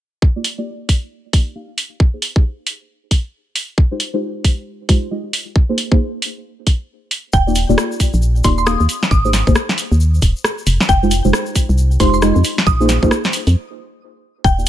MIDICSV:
0, 0, Header, 1, 5, 480
1, 0, Start_track
1, 0, Key_signature, -3, "major"
1, 0, Tempo, 444444
1, 240, Time_signature, 4, 2, 24, 8
1, 15863, End_track
2, 0, Start_track
2, 0, Title_t, "Synth pluck"
2, 0, Program_c, 0, 84
2, 7920, Note_on_c, 0, 79, 90
2, 8083, Note_off_c, 0, 79, 0
2, 9119, Note_on_c, 0, 84, 89
2, 9214, Note_off_c, 0, 84, 0
2, 9268, Note_on_c, 0, 84, 74
2, 9327, Note_off_c, 0, 84, 0
2, 9357, Note_on_c, 0, 87, 93
2, 9522, Note_off_c, 0, 87, 0
2, 9838, Note_on_c, 0, 87, 89
2, 10228, Note_off_c, 0, 87, 0
2, 11759, Note_on_c, 0, 79, 92
2, 11923, Note_off_c, 0, 79, 0
2, 12960, Note_on_c, 0, 84, 86
2, 13055, Note_off_c, 0, 84, 0
2, 13109, Note_on_c, 0, 84, 75
2, 13167, Note_off_c, 0, 84, 0
2, 13679, Note_on_c, 0, 87, 90
2, 14068, Note_off_c, 0, 87, 0
2, 15601, Note_on_c, 0, 79, 91
2, 15764, Note_off_c, 0, 79, 0
2, 15863, End_track
3, 0, Start_track
3, 0, Title_t, "Synth stab"
3, 0, Program_c, 1, 62
3, 389, Note_on_c, 1, 58, 88
3, 389, Note_on_c, 1, 63, 79
3, 389, Note_on_c, 1, 65, 80
3, 389, Note_on_c, 1, 67, 79
3, 389, Note_on_c, 1, 74, 97
3, 482, Note_off_c, 1, 58, 0
3, 482, Note_off_c, 1, 63, 0
3, 482, Note_off_c, 1, 65, 0
3, 482, Note_off_c, 1, 67, 0
3, 482, Note_off_c, 1, 74, 0
3, 628, Note_on_c, 1, 58, 92
3, 628, Note_on_c, 1, 63, 85
3, 628, Note_on_c, 1, 65, 86
3, 628, Note_on_c, 1, 67, 82
3, 628, Note_on_c, 1, 74, 102
3, 1418, Note_off_c, 1, 58, 0
3, 1418, Note_off_c, 1, 63, 0
3, 1418, Note_off_c, 1, 65, 0
3, 1418, Note_off_c, 1, 67, 0
3, 1418, Note_off_c, 1, 74, 0
3, 1439, Note_on_c, 1, 58, 93
3, 1439, Note_on_c, 1, 65, 90
3, 1439, Note_on_c, 1, 74, 105
3, 1440, Note_on_c, 1, 63, 88
3, 1440, Note_on_c, 1, 67, 90
3, 1645, Note_off_c, 1, 58, 0
3, 1645, Note_off_c, 1, 63, 0
3, 1645, Note_off_c, 1, 65, 0
3, 1645, Note_off_c, 1, 67, 0
3, 1645, Note_off_c, 1, 74, 0
3, 1680, Note_on_c, 1, 58, 73
3, 1680, Note_on_c, 1, 63, 68
3, 1680, Note_on_c, 1, 65, 71
3, 1680, Note_on_c, 1, 67, 68
3, 1680, Note_on_c, 1, 77, 82
3, 1829, Note_off_c, 1, 58, 0
3, 1829, Note_off_c, 1, 65, 0
3, 1829, Note_off_c, 1, 67, 0
3, 1829, Note_off_c, 1, 77, 0
3, 1830, Note_off_c, 1, 63, 0
3, 2307, Note_on_c, 1, 58, 78
3, 2307, Note_on_c, 1, 63, 70
3, 2307, Note_on_c, 1, 67, 72
3, 2308, Note_on_c, 1, 68, 69
3, 2308, Note_on_c, 1, 72, 85
3, 2401, Note_off_c, 1, 58, 0
3, 2401, Note_off_c, 1, 63, 0
3, 2401, Note_off_c, 1, 67, 0
3, 2401, Note_off_c, 1, 68, 0
3, 2401, Note_off_c, 1, 72, 0
3, 2547, Note_on_c, 1, 58, 83
3, 2547, Note_on_c, 1, 67, 77
3, 2547, Note_on_c, 1, 68, 77
3, 2547, Note_on_c, 1, 72, 94
3, 2548, Note_on_c, 1, 63, 79
3, 2641, Note_off_c, 1, 58, 0
3, 2641, Note_off_c, 1, 63, 0
3, 2641, Note_off_c, 1, 67, 0
3, 2641, Note_off_c, 1, 68, 0
3, 2641, Note_off_c, 1, 72, 0
3, 4227, Note_on_c, 1, 63, 81
3, 4227, Note_on_c, 1, 65, 83
3, 4227, Note_on_c, 1, 67, 79
3, 4227, Note_on_c, 1, 72, 98
3, 4228, Note_on_c, 1, 56, 90
3, 4321, Note_off_c, 1, 56, 0
3, 4321, Note_off_c, 1, 63, 0
3, 4321, Note_off_c, 1, 65, 0
3, 4321, Note_off_c, 1, 67, 0
3, 4321, Note_off_c, 1, 72, 0
3, 4466, Note_on_c, 1, 65, 87
3, 4467, Note_on_c, 1, 56, 95
3, 4467, Note_on_c, 1, 63, 86
3, 4467, Note_on_c, 1, 67, 86
3, 4467, Note_on_c, 1, 72, 102
3, 5257, Note_off_c, 1, 56, 0
3, 5257, Note_off_c, 1, 63, 0
3, 5257, Note_off_c, 1, 65, 0
3, 5257, Note_off_c, 1, 67, 0
3, 5257, Note_off_c, 1, 72, 0
3, 5279, Note_on_c, 1, 56, 98
3, 5279, Note_on_c, 1, 63, 90
3, 5279, Note_on_c, 1, 65, 88
3, 5279, Note_on_c, 1, 67, 87
3, 5279, Note_on_c, 1, 72, 109
3, 5484, Note_off_c, 1, 63, 0
3, 5484, Note_off_c, 1, 65, 0
3, 5484, Note_off_c, 1, 67, 0
3, 5484, Note_off_c, 1, 72, 0
3, 5485, Note_off_c, 1, 56, 0
3, 5520, Note_on_c, 1, 56, 76
3, 5520, Note_on_c, 1, 63, 67
3, 5520, Note_on_c, 1, 65, 68
3, 5520, Note_on_c, 1, 67, 68
3, 5520, Note_on_c, 1, 75, 83
3, 5669, Note_off_c, 1, 56, 0
3, 5669, Note_off_c, 1, 65, 0
3, 5669, Note_off_c, 1, 67, 0
3, 5669, Note_off_c, 1, 75, 0
3, 5670, Note_off_c, 1, 63, 0
3, 6149, Note_on_c, 1, 58, 76
3, 6149, Note_on_c, 1, 63, 71
3, 6149, Note_on_c, 1, 65, 72
3, 6149, Note_on_c, 1, 68, 71
3, 6149, Note_on_c, 1, 72, 86
3, 6242, Note_off_c, 1, 58, 0
3, 6242, Note_off_c, 1, 63, 0
3, 6242, Note_off_c, 1, 65, 0
3, 6242, Note_off_c, 1, 68, 0
3, 6242, Note_off_c, 1, 72, 0
3, 6388, Note_on_c, 1, 58, 84
3, 6388, Note_on_c, 1, 63, 78
3, 6388, Note_on_c, 1, 65, 80
3, 6388, Note_on_c, 1, 68, 79
3, 6388, Note_on_c, 1, 72, 96
3, 6481, Note_off_c, 1, 65, 0
3, 6482, Note_off_c, 1, 58, 0
3, 6482, Note_off_c, 1, 63, 0
3, 6482, Note_off_c, 1, 68, 0
3, 6482, Note_off_c, 1, 72, 0
3, 8068, Note_on_c, 1, 58, 85
3, 8068, Note_on_c, 1, 63, 83
3, 8068, Note_on_c, 1, 65, 81
3, 8068, Note_on_c, 1, 67, 82
3, 8068, Note_on_c, 1, 74, 100
3, 8161, Note_off_c, 1, 58, 0
3, 8161, Note_off_c, 1, 63, 0
3, 8161, Note_off_c, 1, 65, 0
3, 8161, Note_off_c, 1, 67, 0
3, 8161, Note_off_c, 1, 74, 0
3, 8307, Note_on_c, 1, 58, 94
3, 8307, Note_on_c, 1, 63, 86
3, 8307, Note_on_c, 1, 65, 88
3, 8307, Note_on_c, 1, 67, 84
3, 8307, Note_on_c, 1, 74, 107
3, 9097, Note_off_c, 1, 58, 0
3, 9097, Note_off_c, 1, 63, 0
3, 9097, Note_off_c, 1, 65, 0
3, 9097, Note_off_c, 1, 67, 0
3, 9097, Note_off_c, 1, 74, 0
3, 9119, Note_on_c, 1, 58, 95
3, 9119, Note_on_c, 1, 63, 86
3, 9119, Note_on_c, 1, 65, 91
3, 9119, Note_on_c, 1, 67, 85
3, 9119, Note_on_c, 1, 74, 106
3, 9324, Note_off_c, 1, 58, 0
3, 9324, Note_off_c, 1, 67, 0
3, 9324, Note_off_c, 1, 74, 0
3, 9325, Note_off_c, 1, 63, 0
3, 9325, Note_off_c, 1, 65, 0
3, 9358, Note_on_c, 1, 63, 68
3, 9358, Note_on_c, 1, 65, 67
3, 9358, Note_on_c, 1, 67, 70
3, 9358, Note_on_c, 1, 77, 82
3, 9359, Note_on_c, 1, 58, 78
3, 9509, Note_off_c, 1, 58, 0
3, 9509, Note_off_c, 1, 63, 0
3, 9509, Note_off_c, 1, 65, 0
3, 9509, Note_off_c, 1, 67, 0
3, 9509, Note_off_c, 1, 77, 0
3, 9988, Note_on_c, 1, 58, 79
3, 9988, Note_on_c, 1, 63, 72
3, 9988, Note_on_c, 1, 67, 71
3, 9988, Note_on_c, 1, 68, 70
3, 9988, Note_on_c, 1, 72, 86
3, 10081, Note_off_c, 1, 58, 0
3, 10081, Note_off_c, 1, 63, 0
3, 10081, Note_off_c, 1, 67, 0
3, 10081, Note_off_c, 1, 68, 0
3, 10081, Note_off_c, 1, 72, 0
3, 10228, Note_on_c, 1, 58, 84
3, 10228, Note_on_c, 1, 63, 81
3, 10228, Note_on_c, 1, 72, 95
3, 10229, Note_on_c, 1, 67, 80
3, 10229, Note_on_c, 1, 68, 77
3, 10321, Note_off_c, 1, 58, 0
3, 10321, Note_off_c, 1, 63, 0
3, 10321, Note_off_c, 1, 72, 0
3, 10322, Note_off_c, 1, 67, 0
3, 10322, Note_off_c, 1, 68, 0
3, 11908, Note_on_c, 1, 56, 91
3, 11908, Note_on_c, 1, 63, 83
3, 11909, Note_on_c, 1, 65, 80
3, 11909, Note_on_c, 1, 67, 82
3, 11909, Note_on_c, 1, 72, 97
3, 12001, Note_off_c, 1, 56, 0
3, 12001, Note_off_c, 1, 63, 0
3, 12002, Note_off_c, 1, 65, 0
3, 12002, Note_off_c, 1, 67, 0
3, 12002, Note_off_c, 1, 72, 0
3, 12148, Note_on_c, 1, 56, 94
3, 12148, Note_on_c, 1, 63, 86
3, 12148, Note_on_c, 1, 65, 84
3, 12148, Note_on_c, 1, 72, 102
3, 12149, Note_on_c, 1, 67, 88
3, 12938, Note_off_c, 1, 56, 0
3, 12938, Note_off_c, 1, 63, 0
3, 12938, Note_off_c, 1, 65, 0
3, 12938, Note_off_c, 1, 67, 0
3, 12938, Note_off_c, 1, 72, 0
3, 12959, Note_on_c, 1, 56, 98
3, 12959, Note_on_c, 1, 63, 90
3, 12959, Note_on_c, 1, 65, 89
3, 12959, Note_on_c, 1, 67, 90
3, 12959, Note_on_c, 1, 72, 104
3, 13164, Note_off_c, 1, 56, 0
3, 13164, Note_off_c, 1, 63, 0
3, 13164, Note_off_c, 1, 65, 0
3, 13164, Note_off_c, 1, 72, 0
3, 13165, Note_off_c, 1, 67, 0
3, 13198, Note_on_c, 1, 56, 77
3, 13198, Note_on_c, 1, 63, 67
3, 13198, Note_on_c, 1, 67, 69
3, 13199, Note_on_c, 1, 65, 69
3, 13199, Note_on_c, 1, 75, 83
3, 13349, Note_off_c, 1, 56, 0
3, 13349, Note_off_c, 1, 63, 0
3, 13349, Note_off_c, 1, 65, 0
3, 13349, Note_off_c, 1, 67, 0
3, 13349, Note_off_c, 1, 75, 0
3, 13828, Note_on_c, 1, 58, 82
3, 13828, Note_on_c, 1, 63, 74
3, 13828, Note_on_c, 1, 65, 70
3, 13828, Note_on_c, 1, 68, 74
3, 13828, Note_on_c, 1, 72, 88
3, 13921, Note_off_c, 1, 58, 0
3, 13921, Note_off_c, 1, 63, 0
3, 13921, Note_off_c, 1, 65, 0
3, 13921, Note_off_c, 1, 68, 0
3, 13922, Note_off_c, 1, 72, 0
3, 14067, Note_on_c, 1, 58, 87
3, 14067, Note_on_c, 1, 63, 83
3, 14067, Note_on_c, 1, 65, 79
3, 14067, Note_on_c, 1, 68, 80
3, 14067, Note_on_c, 1, 72, 100
3, 14161, Note_off_c, 1, 58, 0
3, 14161, Note_off_c, 1, 63, 0
3, 14161, Note_off_c, 1, 65, 0
3, 14161, Note_off_c, 1, 68, 0
3, 14161, Note_off_c, 1, 72, 0
3, 15747, Note_on_c, 1, 63, 80
3, 15747, Note_on_c, 1, 65, 81
3, 15748, Note_on_c, 1, 58, 86
3, 15748, Note_on_c, 1, 67, 83
3, 15748, Note_on_c, 1, 74, 99
3, 15841, Note_off_c, 1, 58, 0
3, 15841, Note_off_c, 1, 63, 0
3, 15841, Note_off_c, 1, 65, 0
3, 15841, Note_off_c, 1, 67, 0
3, 15841, Note_off_c, 1, 74, 0
3, 15863, End_track
4, 0, Start_track
4, 0, Title_t, "FM bass"
4, 0, Program_c, 2, 39
4, 7921, Note_on_c, 2, 27, 93
4, 8271, Note_off_c, 2, 27, 0
4, 8309, Note_on_c, 2, 27, 84
4, 8386, Note_off_c, 2, 27, 0
4, 8789, Note_on_c, 2, 34, 89
4, 9097, Note_off_c, 2, 34, 0
4, 9120, Note_on_c, 2, 27, 90
4, 9471, Note_off_c, 2, 27, 0
4, 9508, Note_on_c, 2, 39, 82
4, 9585, Note_off_c, 2, 39, 0
4, 9841, Note_on_c, 2, 32, 94
4, 10191, Note_off_c, 2, 32, 0
4, 10229, Note_on_c, 2, 32, 85
4, 10305, Note_off_c, 2, 32, 0
4, 10708, Note_on_c, 2, 39, 91
4, 11017, Note_off_c, 2, 39, 0
4, 11040, Note_on_c, 2, 27, 88
4, 11165, Note_off_c, 2, 27, 0
4, 11521, Note_on_c, 2, 29, 93
4, 11645, Note_off_c, 2, 29, 0
4, 11760, Note_on_c, 2, 29, 96
4, 12111, Note_off_c, 2, 29, 0
4, 12150, Note_on_c, 2, 29, 85
4, 12226, Note_off_c, 2, 29, 0
4, 12629, Note_on_c, 2, 36, 91
4, 12937, Note_off_c, 2, 36, 0
4, 12960, Note_on_c, 2, 29, 88
4, 13311, Note_off_c, 2, 29, 0
4, 13348, Note_on_c, 2, 41, 83
4, 13425, Note_off_c, 2, 41, 0
4, 13680, Note_on_c, 2, 34, 92
4, 14031, Note_off_c, 2, 34, 0
4, 14068, Note_on_c, 2, 34, 87
4, 14145, Note_off_c, 2, 34, 0
4, 14548, Note_on_c, 2, 41, 92
4, 14640, Note_off_c, 2, 41, 0
4, 15601, Note_on_c, 2, 27, 96
4, 15863, Note_off_c, 2, 27, 0
4, 15863, End_track
5, 0, Start_track
5, 0, Title_t, "Drums"
5, 240, Note_on_c, 9, 36, 109
5, 348, Note_off_c, 9, 36, 0
5, 480, Note_on_c, 9, 46, 108
5, 588, Note_off_c, 9, 46, 0
5, 960, Note_on_c, 9, 36, 59
5, 960, Note_on_c, 9, 46, 101
5, 1068, Note_off_c, 9, 36, 0
5, 1068, Note_off_c, 9, 46, 0
5, 1440, Note_on_c, 9, 36, 100
5, 1440, Note_on_c, 9, 46, 100
5, 1548, Note_off_c, 9, 36, 0
5, 1548, Note_off_c, 9, 46, 0
5, 1920, Note_on_c, 9, 46, 100
5, 2028, Note_off_c, 9, 46, 0
5, 2160, Note_on_c, 9, 36, 112
5, 2268, Note_off_c, 9, 36, 0
5, 2399, Note_on_c, 9, 46, 99
5, 2507, Note_off_c, 9, 46, 0
5, 2548, Note_on_c, 9, 36, 106
5, 2656, Note_off_c, 9, 36, 0
5, 2879, Note_on_c, 9, 46, 99
5, 2987, Note_off_c, 9, 46, 0
5, 3359, Note_on_c, 9, 46, 99
5, 3360, Note_on_c, 9, 36, 60
5, 3467, Note_off_c, 9, 46, 0
5, 3468, Note_off_c, 9, 36, 0
5, 3840, Note_on_c, 9, 46, 99
5, 3948, Note_off_c, 9, 46, 0
5, 4080, Note_on_c, 9, 36, 112
5, 4188, Note_off_c, 9, 36, 0
5, 4319, Note_on_c, 9, 46, 100
5, 4427, Note_off_c, 9, 46, 0
5, 4800, Note_on_c, 9, 36, 62
5, 4801, Note_on_c, 9, 46, 97
5, 4908, Note_off_c, 9, 36, 0
5, 4909, Note_off_c, 9, 46, 0
5, 5280, Note_on_c, 9, 36, 104
5, 5280, Note_on_c, 9, 46, 93
5, 5388, Note_off_c, 9, 36, 0
5, 5388, Note_off_c, 9, 46, 0
5, 5760, Note_on_c, 9, 46, 97
5, 5868, Note_off_c, 9, 46, 0
5, 6001, Note_on_c, 9, 36, 109
5, 6109, Note_off_c, 9, 36, 0
5, 6240, Note_on_c, 9, 46, 97
5, 6348, Note_off_c, 9, 46, 0
5, 6389, Note_on_c, 9, 36, 105
5, 6497, Note_off_c, 9, 36, 0
5, 6720, Note_on_c, 9, 46, 94
5, 6828, Note_off_c, 9, 46, 0
5, 7200, Note_on_c, 9, 46, 94
5, 7201, Note_on_c, 9, 36, 61
5, 7308, Note_off_c, 9, 46, 0
5, 7309, Note_off_c, 9, 36, 0
5, 7680, Note_on_c, 9, 46, 94
5, 7788, Note_off_c, 9, 46, 0
5, 7916, Note_on_c, 9, 82, 47
5, 7921, Note_on_c, 9, 36, 109
5, 8024, Note_off_c, 9, 82, 0
5, 8029, Note_off_c, 9, 36, 0
5, 8078, Note_on_c, 9, 82, 27
5, 8156, Note_off_c, 9, 82, 0
5, 8156, Note_on_c, 9, 82, 80
5, 8160, Note_on_c, 9, 46, 97
5, 8264, Note_off_c, 9, 82, 0
5, 8268, Note_off_c, 9, 46, 0
5, 8314, Note_on_c, 9, 82, 41
5, 8400, Note_on_c, 9, 37, 116
5, 8404, Note_off_c, 9, 82, 0
5, 8404, Note_on_c, 9, 82, 49
5, 8508, Note_off_c, 9, 37, 0
5, 8512, Note_off_c, 9, 82, 0
5, 8551, Note_on_c, 9, 82, 27
5, 8640, Note_on_c, 9, 36, 60
5, 8640, Note_on_c, 9, 46, 94
5, 8641, Note_off_c, 9, 82, 0
5, 8641, Note_on_c, 9, 82, 91
5, 8748, Note_off_c, 9, 36, 0
5, 8748, Note_off_c, 9, 46, 0
5, 8749, Note_off_c, 9, 82, 0
5, 8786, Note_on_c, 9, 82, 38
5, 8877, Note_off_c, 9, 82, 0
5, 8877, Note_on_c, 9, 82, 44
5, 8985, Note_off_c, 9, 82, 0
5, 9026, Note_on_c, 9, 82, 26
5, 9115, Note_off_c, 9, 82, 0
5, 9115, Note_on_c, 9, 82, 90
5, 9120, Note_on_c, 9, 36, 100
5, 9120, Note_on_c, 9, 46, 96
5, 9223, Note_off_c, 9, 82, 0
5, 9228, Note_off_c, 9, 36, 0
5, 9228, Note_off_c, 9, 46, 0
5, 9264, Note_on_c, 9, 82, 36
5, 9360, Note_off_c, 9, 82, 0
5, 9360, Note_on_c, 9, 37, 117
5, 9360, Note_on_c, 9, 82, 52
5, 9468, Note_off_c, 9, 37, 0
5, 9468, Note_off_c, 9, 82, 0
5, 9506, Note_on_c, 9, 82, 24
5, 9600, Note_on_c, 9, 46, 95
5, 9604, Note_off_c, 9, 82, 0
5, 9604, Note_on_c, 9, 82, 91
5, 9708, Note_off_c, 9, 46, 0
5, 9712, Note_off_c, 9, 82, 0
5, 9749, Note_on_c, 9, 38, 60
5, 9751, Note_on_c, 9, 82, 36
5, 9840, Note_on_c, 9, 36, 102
5, 9842, Note_off_c, 9, 82, 0
5, 9842, Note_on_c, 9, 82, 48
5, 9857, Note_off_c, 9, 38, 0
5, 9948, Note_off_c, 9, 36, 0
5, 9950, Note_off_c, 9, 82, 0
5, 9991, Note_on_c, 9, 82, 26
5, 10080, Note_on_c, 9, 38, 48
5, 10080, Note_on_c, 9, 46, 101
5, 10081, Note_off_c, 9, 82, 0
5, 10081, Note_on_c, 9, 82, 88
5, 10188, Note_off_c, 9, 38, 0
5, 10188, Note_off_c, 9, 46, 0
5, 10189, Note_off_c, 9, 82, 0
5, 10229, Note_on_c, 9, 36, 100
5, 10234, Note_on_c, 9, 82, 34
5, 10314, Note_off_c, 9, 82, 0
5, 10314, Note_on_c, 9, 82, 46
5, 10320, Note_on_c, 9, 37, 113
5, 10337, Note_off_c, 9, 36, 0
5, 10422, Note_off_c, 9, 82, 0
5, 10428, Note_off_c, 9, 37, 0
5, 10468, Note_on_c, 9, 38, 54
5, 10472, Note_on_c, 9, 82, 25
5, 10560, Note_on_c, 9, 46, 100
5, 10566, Note_off_c, 9, 82, 0
5, 10566, Note_on_c, 9, 82, 90
5, 10576, Note_off_c, 9, 38, 0
5, 10668, Note_off_c, 9, 46, 0
5, 10674, Note_off_c, 9, 82, 0
5, 10714, Note_on_c, 9, 82, 38
5, 10804, Note_off_c, 9, 82, 0
5, 10804, Note_on_c, 9, 82, 47
5, 10912, Note_off_c, 9, 82, 0
5, 10956, Note_on_c, 9, 82, 25
5, 11037, Note_off_c, 9, 82, 0
5, 11037, Note_on_c, 9, 82, 82
5, 11040, Note_on_c, 9, 36, 57
5, 11041, Note_on_c, 9, 46, 98
5, 11145, Note_off_c, 9, 82, 0
5, 11148, Note_off_c, 9, 36, 0
5, 11149, Note_off_c, 9, 46, 0
5, 11192, Note_on_c, 9, 82, 34
5, 11280, Note_on_c, 9, 37, 112
5, 11284, Note_off_c, 9, 82, 0
5, 11284, Note_on_c, 9, 82, 46
5, 11388, Note_off_c, 9, 37, 0
5, 11392, Note_off_c, 9, 82, 0
5, 11429, Note_on_c, 9, 82, 23
5, 11518, Note_off_c, 9, 82, 0
5, 11518, Note_on_c, 9, 82, 81
5, 11520, Note_on_c, 9, 46, 96
5, 11626, Note_off_c, 9, 82, 0
5, 11628, Note_off_c, 9, 46, 0
5, 11669, Note_on_c, 9, 38, 62
5, 11672, Note_on_c, 9, 82, 33
5, 11760, Note_off_c, 9, 82, 0
5, 11760, Note_on_c, 9, 36, 108
5, 11760, Note_on_c, 9, 82, 51
5, 11777, Note_off_c, 9, 38, 0
5, 11868, Note_off_c, 9, 36, 0
5, 11868, Note_off_c, 9, 82, 0
5, 11914, Note_on_c, 9, 82, 23
5, 12000, Note_off_c, 9, 82, 0
5, 12000, Note_on_c, 9, 46, 107
5, 12000, Note_on_c, 9, 82, 77
5, 12108, Note_off_c, 9, 46, 0
5, 12108, Note_off_c, 9, 82, 0
5, 12147, Note_on_c, 9, 82, 37
5, 12240, Note_on_c, 9, 37, 115
5, 12247, Note_off_c, 9, 82, 0
5, 12247, Note_on_c, 9, 82, 52
5, 12348, Note_off_c, 9, 37, 0
5, 12355, Note_off_c, 9, 82, 0
5, 12378, Note_on_c, 9, 82, 23
5, 12479, Note_on_c, 9, 46, 101
5, 12480, Note_on_c, 9, 36, 58
5, 12481, Note_off_c, 9, 82, 0
5, 12481, Note_on_c, 9, 82, 83
5, 12587, Note_off_c, 9, 46, 0
5, 12588, Note_off_c, 9, 36, 0
5, 12589, Note_off_c, 9, 82, 0
5, 12629, Note_on_c, 9, 82, 38
5, 12718, Note_off_c, 9, 82, 0
5, 12718, Note_on_c, 9, 82, 44
5, 12826, Note_off_c, 9, 82, 0
5, 12867, Note_on_c, 9, 82, 24
5, 12960, Note_on_c, 9, 36, 96
5, 12960, Note_on_c, 9, 46, 103
5, 12962, Note_off_c, 9, 82, 0
5, 12962, Note_on_c, 9, 82, 85
5, 13068, Note_off_c, 9, 36, 0
5, 13068, Note_off_c, 9, 46, 0
5, 13070, Note_off_c, 9, 82, 0
5, 13108, Note_on_c, 9, 82, 35
5, 13197, Note_off_c, 9, 82, 0
5, 13197, Note_on_c, 9, 82, 53
5, 13200, Note_on_c, 9, 37, 110
5, 13305, Note_off_c, 9, 82, 0
5, 13308, Note_off_c, 9, 37, 0
5, 13344, Note_on_c, 9, 82, 22
5, 13439, Note_off_c, 9, 82, 0
5, 13439, Note_on_c, 9, 82, 82
5, 13441, Note_on_c, 9, 46, 102
5, 13547, Note_off_c, 9, 82, 0
5, 13549, Note_off_c, 9, 46, 0
5, 13589, Note_on_c, 9, 38, 64
5, 13589, Note_on_c, 9, 82, 36
5, 13680, Note_off_c, 9, 82, 0
5, 13680, Note_on_c, 9, 36, 110
5, 13680, Note_on_c, 9, 82, 50
5, 13697, Note_off_c, 9, 38, 0
5, 13788, Note_off_c, 9, 36, 0
5, 13788, Note_off_c, 9, 82, 0
5, 13835, Note_on_c, 9, 82, 26
5, 13920, Note_on_c, 9, 38, 53
5, 13920, Note_on_c, 9, 46, 107
5, 13922, Note_off_c, 9, 82, 0
5, 13922, Note_on_c, 9, 82, 84
5, 14028, Note_off_c, 9, 38, 0
5, 14028, Note_off_c, 9, 46, 0
5, 14030, Note_off_c, 9, 82, 0
5, 14068, Note_on_c, 9, 36, 98
5, 14075, Note_on_c, 9, 82, 35
5, 14160, Note_on_c, 9, 37, 116
5, 14168, Note_off_c, 9, 82, 0
5, 14168, Note_on_c, 9, 82, 47
5, 14176, Note_off_c, 9, 36, 0
5, 14268, Note_off_c, 9, 37, 0
5, 14276, Note_off_c, 9, 82, 0
5, 14304, Note_on_c, 9, 82, 25
5, 14309, Note_on_c, 9, 38, 58
5, 14398, Note_off_c, 9, 82, 0
5, 14398, Note_on_c, 9, 82, 76
5, 14399, Note_on_c, 9, 46, 105
5, 14417, Note_off_c, 9, 38, 0
5, 14506, Note_off_c, 9, 82, 0
5, 14507, Note_off_c, 9, 46, 0
5, 14547, Note_on_c, 9, 46, 63
5, 14547, Note_on_c, 9, 82, 35
5, 14655, Note_off_c, 9, 46, 0
5, 14655, Note_off_c, 9, 82, 0
5, 15600, Note_on_c, 9, 36, 109
5, 15610, Note_on_c, 9, 82, 48
5, 15708, Note_off_c, 9, 36, 0
5, 15718, Note_off_c, 9, 82, 0
5, 15757, Note_on_c, 9, 82, 28
5, 15863, Note_off_c, 9, 82, 0
5, 15863, End_track
0, 0, End_of_file